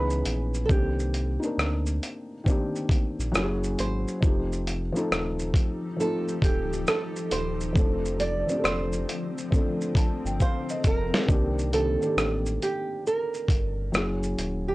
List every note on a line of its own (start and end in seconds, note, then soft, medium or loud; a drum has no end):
0.00 0.23 C#2 loud
0.00 0.58 E3 medium
0.00 0.59 B3 medium
0.00 0.60 C#4 medium
0.00 0.60 D#4 medium
0.00 0.61 G#4 medium
0.00 0.65 B4 medium
0.10 shaker soft
0.25 0.68 A#1 medium
0.25 closed hi-hat medium
0.25 shaker medium
0.54 shaker soft
0.66 1.38 C2 loud
0.66 1.27 D#3 medium
0.66 1.28 A#3 medium
0.66 0.70 A4 medium
0.66 kick loud
0.70 1.28 C4 medium
0.70 1.29 D4 medium
0.70 2.43 G4 medium
0.70 1.30 G4 medium
0.70 shaker medium
0.99 shaker soft
1.14 closed hi-hat medium
1.14 shaker soft
1.39 2.33 A#3 medium
1.39 2.33 C4 medium
1.39 2.32 D#4 medium
1.39 shaker soft
1.44 2.34 D4 medium
1.44 2.35 A#4 medium
1.58 2.00 D2 loud
1.58 cross-stick loud
1.58 shaker medium
1.86 shaker medium
2.03 closed hi-hat medium
2.03 shaker soft
2.44 3.33 D#3 medium
2.44 3.31 A#3 medium
2.44 3.35 C4 medium
2.44 kick medium
2.44 shaker medium
2.48 3.36 D4 medium
2.48 3.35 G4 medium
2.76 shaker soft
2.89 kick medium
2.89 closed hi-hat medium
2.89 shaker soft
3.19 3.34 A#1 medium
3.19 shaker medium
3.32 3.76 F#1 loud
3.32 4.11 F#3 loud
3.32 4.12 A#3 medium
3.32 4.12 C#4 medium
3.32 4.13 E4 medium
3.32 cross-stick loud
3.32 shaker medium
3.37 3.44 G4 medium
3.44 4.17 G#4 medium
3.64 shaker medium
3.79 4.06 G#1 medium
3.79 5.96 C5 loud
3.79 closed hi-hat medium
3.79 shaker medium
4.08 shaker soft
4.20 4.91 F1 loud
4.20 4.80 F3 medium
4.20 7.72 F3 medium
4.20 4.81 A3 medium
4.20 4.81 C4 medium
4.20 7.72 D#4 medium
4.20 7.72 G4 medium
4.20 7.72 A4 medium
4.20 kick loud
4.20 shaker medium
4.25 4.82 D#4 medium
4.25 4.83 G4 medium
4.53 shaker medium
4.67 closed hi-hat medium
4.67 shaker soft
4.92 5.85 F3 medium
4.92 5.86 A3 medium
4.92 5.86 C4 medium
4.92 shaker soft
4.97 5.87 D#4 medium
4.97 5.88 A4 medium
5.11 5.53 D#1 medium
5.11 cross-stick loud
5.11 shaker medium
5.39 shaker soft
5.54 kick medium
5.54 closed hi-hat medium
5.54 shaker soft
5.96 7.50 F3 medium
5.96 7.50 A3 medium
5.96 7.51 C4 medium
5.96 6.41 A4 medium
5.96 shaker medium
6.01 7.52 D#4 medium
6.01 7.52 F4 medium
6.28 shaker soft
6.42 6.85 D1 loud
6.42 6.89 G4 medium
6.42 kick medium
6.42 closed hi-hat medium
6.42 shaker medium
6.73 shaker soft
6.87 7.32 A4 medium
6.87 cross-stick loud
6.87 shaker medium
7.16 shaker soft
7.31 7.77 D#1 loud
7.31 8.16 C5 loud
7.31 closed hi-hat medium
7.31 shaker medium
7.61 shaker soft
7.73 8.44 F1 loud
7.73 11.25 D3 medium
7.73 8.33 F3 medium
7.73 11.25 F3 medium
7.73 8.33 A3 medium
7.73 8.34 C4 medium
7.73 kick loud
7.73 shaker medium
7.77 8.35 D4 medium
7.77 8.36 A4 medium
8.05 shaker medium
8.20 8.63 D5 loud
8.20 closed hi-hat medium
8.20 shaker soft
8.47 9.39 F3 medium
8.47 9.39 A3 medium
8.47 9.40 C4 medium
8.47 shaker soft
8.51 9.41 D4 medium
8.51 8.55 G4 medium
8.59 9.45 A4 medium
8.64 9.06 F1 medium
8.64 10.41 C5 medium
8.64 cross-stick loud
8.64 shaker medium
8.93 shaker soft
9.09 closed hi-hat medium
9.09 shaker soft
9.38 shaker soft
9.51 11.05 D3 medium
9.51 11.03 F3 medium
9.51 11.03 A3 medium
9.51 11.04 C4 medium
9.51 kick medium
9.51 shaker medium
9.56 11.06 A4 medium
9.81 shaker soft
9.95 10.23 A5 medium
9.95 kick medium
9.95 closed hi-hat medium
9.95 shaker soft
10.25 10.40 G1 medium
10.25 10.40 G5 medium
10.25 shaker soft
10.40 10.86 C5 loud
10.40 10.68 F5 medium
10.40 kick medium
10.40 shaker medium
10.69 11.26 D#5 medium
10.69 shaker soft
10.84 11.12 F1 medium
10.84 11.70 A#4 loud
10.84 kick medium
10.84 closed hi-hat medium
10.84 shaker soft
11.14 snare medium
11.26 11.97 C2 medium
11.26 11.66 D#3 medium
11.26 11.67 A#3 medium
11.26 11.68 C4 medium
11.26 kick loud
11.26 shaker medium
11.30 11.68 D4 medium
11.30 11.69 G4 medium
11.59 shaker soft
11.71 11.96 D#3 medium
11.71 11.96 A#3 medium
11.71 11.97 C4 medium
11.71 12.63 A4 loud
11.71 closed hi-hat medium
11.71 shaker soft
11.75 11.98 D4 medium
11.75 11.98 G4 medium
12.00 13.44 D#3 medium
12.00 13.44 A#3 medium
12.00 13.45 C4 medium
12.00 13.45 D4 medium
12.00 shaker soft
12.05 13.46 G4 medium
12.17 12.59 A1 medium
12.17 cross-stick loud
12.17 shaker medium
12.46 shaker soft
12.62 13.03 G4 medium
12.62 closed hi-hat medium
12.62 shaker soft
13.07 14.68 A#4 medium
13.07 shaker medium
13.34 shaker soft
13.48 13.91 G1 medium
13.48 kick medium
13.48 closed hi-hat medium
13.48 shaker soft
13.92 14.35 F#1 loud
13.92 14.71 F#3 medium
13.92 14.71 A#3 medium
13.92 14.72 C#4 medium
13.92 cross-stick loud
13.92 shaker medium
13.96 14.73 E4 medium
13.96 14.73 G#4 medium
14.23 shaker soft
14.38 14.75 D#1 medium
14.38 closed hi-hat medium
14.38 shaker medium
14.68 14.75 G4 medium